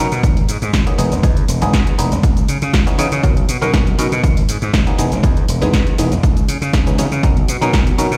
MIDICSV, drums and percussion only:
0, 0, Header, 1, 2, 480
1, 0, Start_track
1, 0, Tempo, 500000
1, 1186, Time_signature, 4, 2, 24, 8
1, 7845, End_track
2, 0, Start_track
2, 0, Title_t, "Drums"
2, 114, Note_on_c, 9, 42, 43
2, 120, Note_on_c, 9, 82, 33
2, 210, Note_off_c, 9, 42, 0
2, 216, Note_off_c, 9, 82, 0
2, 225, Note_on_c, 9, 36, 127
2, 227, Note_on_c, 9, 42, 71
2, 233, Note_on_c, 9, 82, 45
2, 321, Note_off_c, 9, 36, 0
2, 323, Note_off_c, 9, 42, 0
2, 329, Note_off_c, 9, 82, 0
2, 355, Note_on_c, 9, 46, 62
2, 451, Note_off_c, 9, 46, 0
2, 467, Note_on_c, 9, 46, 107
2, 473, Note_on_c, 9, 82, 78
2, 563, Note_off_c, 9, 46, 0
2, 569, Note_off_c, 9, 82, 0
2, 595, Note_on_c, 9, 42, 42
2, 601, Note_on_c, 9, 82, 35
2, 691, Note_off_c, 9, 42, 0
2, 697, Note_off_c, 9, 82, 0
2, 705, Note_on_c, 9, 36, 112
2, 706, Note_on_c, 9, 42, 70
2, 707, Note_on_c, 9, 38, 127
2, 712, Note_on_c, 9, 82, 47
2, 801, Note_off_c, 9, 36, 0
2, 802, Note_off_c, 9, 42, 0
2, 803, Note_off_c, 9, 38, 0
2, 808, Note_off_c, 9, 82, 0
2, 834, Note_on_c, 9, 42, 44
2, 930, Note_off_c, 9, 42, 0
2, 946, Note_on_c, 9, 46, 106
2, 952, Note_on_c, 9, 82, 78
2, 1042, Note_off_c, 9, 46, 0
2, 1048, Note_off_c, 9, 82, 0
2, 1073, Note_on_c, 9, 42, 42
2, 1080, Note_on_c, 9, 82, 34
2, 1169, Note_off_c, 9, 42, 0
2, 1176, Note_off_c, 9, 82, 0
2, 1184, Note_on_c, 9, 36, 123
2, 1185, Note_on_c, 9, 42, 65
2, 1192, Note_on_c, 9, 82, 44
2, 1280, Note_off_c, 9, 36, 0
2, 1281, Note_off_c, 9, 42, 0
2, 1288, Note_off_c, 9, 82, 0
2, 1313, Note_on_c, 9, 42, 41
2, 1409, Note_off_c, 9, 42, 0
2, 1425, Note_on_c, 9, 46, 111
2, 1431, Note_on_c, 9, 82, 76
2, 1521, Note_off_c, 9, 46, 0
2, 1527, Note_off_c, 9, 82, 0
2, 1553, Note_on_c, 9, 42, 40
2, 1560, Note_on_c, 9, 82, 32
2, 1649, Note_off_c, 9, 42, 0
2, 1656, Note_off_c, 9, 82, 0
2, 1665, Note_on_c, 9, 36, 117
2, 1666, Note_on_c, 9, 42, 70
2, 1667, Note_on_c, 9, 38, 127
2, 1672, Note_on_c, 9, 82, 45
2, 1761, Note_off_c, 9, 36, 0
2, 1762, Note_off_c, 9, 42, 0
2, 1763, Note_off_c, 9, 38, 0
2, 1768, Note_off_c, 9, 82, 0
2, 1795, Note_on_c, 9, 42, 43
2, 1891, Note_off_c, 9, 42, 0
2, 1907, Note_on_c, 9, 46, 117
2, 1913, Note_on_c, 9, 82, 76
2, 2003, Note_off_c, 9, 46, 0
2, 2009, Note_off_c, 9, 82, 0
2, 2034, Note_on_c, 9, 42, 40
2, 2040, Note_on_c, 9, 82, 32
2, 2130, Note_off_c, 9, 42, 0
2, 2136, Note_off_c, 9, 82, 0
2, 2145, Note_on_c, 9, 36, 127
2, 2145, Note_on_c, 9, 42, 66
2, 2151, Note_on_c, 9, 82, 43
2, 2241, Note_off_c, 9, 36, 0
2, 2241, Note_off_c, 9, 42, 0
2, 2247, Note_off_c, 9, 82, 0
2, 2273, Note_on_c, 9, 42, 40
2, 2280, Note_on_c, 9, 82, 30
2, 2369, Note_off_c, 9, 42, 0
2, 2376, Note_off_c, 9, 82, 0
2, 2386, Note_on_c, 9, 46, 106
2, 2392, Note_on_c, 9, 82, 74
2, 2482, Note_off_c, 9, 46, 0
2, 2488, Note_off_c, 9, 82, 0
2, 2514, Note_on_c, 9, 42, 41
2, 2521, Note_on_c, 9, 82, 32
2, 2610, Note_off_c, 9, 42, 0
2, 2617, Note_off_c, 9, 82, 0
2, 2625, Note_on_c, 9, 36, 112
2, 2628, Note_on_c, 9, 42, 70
2, 2629, Note_on_c, 9, 38, 127
2, 2634, Note_on_c, 9, 82, 45
2, 2721, Note_off_c, 9, 36, 0
2, 2724, Note_off_c, 9, 42, 0
2, 2725, Note_off_c, 9, 38, 0
2, 2730, Note_off_c, 9, 82, 0
2, 2755, Note_on_c, 9, 42, 41
2, 2761, Note_on_c, 9, 82, 32
2, 2851, Note_off_c, 9, 42, 0
2, 2857, Note_off_c, 9, 82, 0
2, 2867, Note_on_c, 9, 46, 112
2, 2873, Note_on_c, 9, 82, 74
2, 2963, Note_off_c, 9, 46, 0
2, 2969, Note_off_c, 9, 82, 0
2, 2994, Note_on_c, 9, 42, 41
2, 3001, Note_on_c, 9, 82, 32
2, 3090, Note_off_c, 9, 42, 0
2, 3097, Note_off_c, 9, 82, 0
2, 3105, Note_on_c, 9, 36, 124
2, 3107, Note_on_c, 9, 42, 63
2, 3113, Note_on_c, 9, 82, 43
2, 3201, Note_off_c, 9, 36, 0
2, 3203, Note_off_c, 9, 42, 0
2, 3209, Note_off_c, 9, 82, 0
2, 3235, Note_on_c, 9, 42, 40
2, 3331, Note_off_c, 9, 42, 0
2, 3348, Note_on_c, 9, 46, 113
2, 3354, Note_on_c, 9, 82, 78
2, 3444, Note_off_c, 9, 46, 0
2, 3450, Note_off_c, 9, 82, 0
2, 3476, Note_on_c, 9, 42, 38
2, 3482, Note_on_c, 9, 82, 31
2, 3572, Note_off_c, 9, 42, 0
2, 3578, Note_off_c, 9, 82, 0
2, 3586, Note_on_c, 9, 36, 116
2, 3587, Note_on_c, 9, 42, 65
2, 3588, Note_on_c, 9, 38, 127
2, 3593, Note_on_c, 9, 82, 43
2, 3682, Note_off_c, 9, 36, 0
2, 3683, Note_off_c, 9, 42, 0
2, 3684, Note_off_c, 9, 38, 0
2, 3689, Note_off_c, 9, 82, 0
2, 3715, Note_on_c, 9, 42, 42
2, 3811, Note_off_c, 9, 42, 0
2, 3827, Note_on_c, 9, 46, 115
2, 3833, Note_on_c, 9, 82, 79
2, 3923, Note_off_c, 9, 46, 0
2, 3929, Note_off_c, 9, 82, 0
2, 3956, Note_on_c, 9, 42, 40
2, 3962, Note_on_c, 9, 82, 32
2, 4052, Note_off_c, 9, 42, 0
2, 4058, Note_off_c, 9, 82, 0
2, 4066, Note_on_c, 9, 36, 127
2, 4068, Note_on_c, 9, 42, 65
2, 4075, Note_on_c, 9, 82, 43
2, 4162, Note_off_c, 9, 36, 0
2, 4164, Note_off_c, 9, 42, 0
2, 4171, Note_off_c, 9, 82, 0
2, 4196, Note_on_c, 9, 46, 65
2, 4292, Note_off_c, 9, 46, 0
2, 4307, Note_on_c, 9, 46, 115
2, 4314, Note_on_c, 9, 82, 74
2, 4403, Note_off_c, 9, 46, 0
2, 4410, Note_off_c, 9, 82, 0
2, 4435, Note_on_c, 9, 42, 40
2, 4441, Note_on_c, 9, 82, 33
2, 4531, Note_off_c, 9, 42, 0
2, 4537, Note_off_c, 9, 82, 0
2, 4546, Note_on_c, 9, 36, 117
2, 4547, Note_on_c, 9, 42, 66
2, 4548, Note_on_c, 9, 38, 127
2, 4553, Note_on_c, 9, 82, 45
2, 4642, Note_off_c, 9, 36, 0
2, 4643, Note_off_c, 9, 42, 0
2, 4644, Note_off_c, 9, 38, 0
2, 4649, Note_off_c, 9, 82, 0
2, 4675, Note_on_c, 9, 42, 41
2, 4771, Note_off_c, 9, 42, 0
2, 4786, Note_on_c, 9, 46, 108
2, 4793, Note_on_c, 9, 82, 76
2, 4882, Note_off_c, 9, 46, 0
2, 4889, Note_off_c, 9, 82, 0
2, 4914, Note_on_c, 9, 42, 39
2, 4920, Note_on_c, 9, 82, 32
2, 5010, Note_off_c, 9, 42, 0
2, 5016, Note_off_c, 9, 82, 0
2, 5025, Note_on_c, 9, 36, 127
2, 5026, Note_on_c, 9, 42, 63
2, 5032, Note_on_c, 9, 82, 43
2, 5121, Note_off_c, 9, 36, 0
2, 5122, Note_off_c, 9, 42, 0
2, 5128, Note_off_c, 9, 82, 0
2, 5154, Note_on_c, 9, 42, 37
2, 5250, Note_off_c, 9, 42, 0
2, 5265, Note_on_c, 9, 46, 112
2, 5272, Note_on_c, 9, 82, 80
2, 5361, Note_off_c, 9, 46, 0
2, 5368, Note_off_c, 9, 82, 0
2, 5394, Note_on_c, 9, 42, 37
2, 5401, Note_on_c, 9, 82, 32
2, 5490, Note_off_c, 9, 42, 0
2, 5497, Note_off_c, 9, 82, 0
2, 5505, Note_on_c, 9, 36, 114
2, 5506, Note_on_c, 9, 42, 68
2, 5507, Note_on_c, 9, 38, 121
2, 5512, Note_on_c, 9, 82, 45
2, 5601, Note_off_c, 9, 36, 0
2, 5602, Note_off_c, 9, 42, 0
2, 5603, Note_off_c, 9, 38, 0
2, 5608, Note_off_c, 9, 82, 0
2, 5632, Note_on_c, 9, 42, 40
2, 5728, Note_off_c, 9, 42, 0
2, 5745, Note_on_c, 9, 46, 111
2, 5751, Note_on_c, 9, 82, 79
2, 5841, Note_off_c, 9, 46, 0
2, 5847, Note_off_c, 9, 82, 0
2, 5873, Note_on_c, 9, 42, 38
2, 5880, Note_on_c, 9, 82, 32
2, 5969, Note_off_c, 9, 42, 0
2, 5976, Note_off_c, 9, 82, 0
2, 5985, Note_on_c, 9, 36, 127
2, 5985, Note_on_c, 9, 42, 62
2, 5991, Note_on_c, 9, 82, 44
2, 6081, Note_off_c, 9, 36, 0
2, 6081, Note_off_c, 9, 42, 0
2, 6087, Note_off_c, 9, 82, 0
2, 6113, Note_on_c, 9, 42, 37
2, 6119, Note_on_c, 9, 82, 30
2, 6209, Note_off_c, 9, 42, 0
2, 6215, Note_off_c, 9, 82, 0
2, 6226, Note_on_c, 9, 46, 110
2, 6232, Note_on_c, 9, 82, 76
2, 6322, Note_off_c, 9, 46, 0
2, 6328, Note_off_c, 9, 82, 0
2, 6354, Note_on_c, 9, 42, 37
2, 6360, Note_on_c, 9, 82, 34
2, 6450, Note_off_c, 9, 42, 0
2, 6456, Note_off_c, 9, 82, 0
2, 6464, Note_on_c, 9, 36, 114
2, 6466, Note_on_c, 9, 42, 67
2, 6467, Note_on_c, 9, 38, 126
2, 6472, Note_on_c, 9, 82, 47
2, 6560, Note_off_c, 9, 36, 0
2, 6562, Note_off_c, 9, 42, 0
2, 6563, Note_off_c, 9, 38, 0
2, 6568, Note_off_c, 9, 82, 0
2, 6595, Note_on_c, 9, 42, 40
2, 6601, Note_on_c, 9, 82, 33
2, 6691, Note_off_c, 9, 42, 0
2, 6697, Note_off_c, 9, 82, 0
2, 6706, Note_on_c, 9, 46, 109
2, 6712, Note_on_c, 9, 82, 77
2, 6802, Note_off_c, 9, 46, 0
2, 6808, Note_off_c, 9, 82, 0
2, 6833, Note_on_c, 9, 42, 39
2, 6840, Note_on_c, 9, 82, 34
2, 6929, Note_off_c, 9, 42, 0
2, 6936, Note_off_c, 9, 82, 0
2, 6944, Note_on_c, 9, 36, 126
2, 6945, Note_on_c, 9, 42, 63
2, 6951, Note_on_c, 9, 82, 43
2, 7040, Note_off_c, 9, 36, 0
2, 7041, Note_off_c, 9, 42, 0
2, 7047, Note_off_c, 9, 82, 0
2, 7073, Note_on_c, 9, 42, 39
2, 7169, Note_off_c, 9, 42, 0
2, 7185, Note_on_c, 9, 46, 109
2, 7191, Note_on_c, 9, 82, 82
2, 7281, Note_off_c, 9, 46, 0
2, 7287, Note_off_c, 9, 82, 0
2, 7314, Note_on_c, 9, 42, 37
2, 7320, Note_on_c, 9, 82, 34
2, 7410, Note_off_c, 9, 42, 0
2, 7416, Note_off_c, 9, 82, 0
2, 7424, Note_on_c, 9, 36, 115
2, 7426, Note_on_c, 9, 42, 65
2, 7427, Note_on_c, 9, 38, 120
2, 7433, Note_on_c, 9, 82, 46
2, 7520, Note_off_c, 9, 36, 0
2, 7522, Note_off_c, 9, 42, 0
2, 7523, Note_off_c, 9, 38, 0
2, 7529, Note_off_c, 9, 82, 0
2, 7554, Note_on_c, 9, 42, 40
2, 7650, Note_off_c, 9, 42, 0
2, 7666, Note_on_c, 9, 46, 108
2, 7672, Note_on_c, 9, 82, 83
2, 7762, Note_off_c, 9, 46, 0
2, 7768, Note_off_c, 9, 82, 0
2, 7794, Note_on_c, 9, 42, 39
2, 7800, Note_on_c, 9, 82, 34
2, 7845, Note_off_c, 9, 42, 0
2, 7845, Note_off_c, 9, 82, 0
2, 7845, End_track
0, 0, End_of_file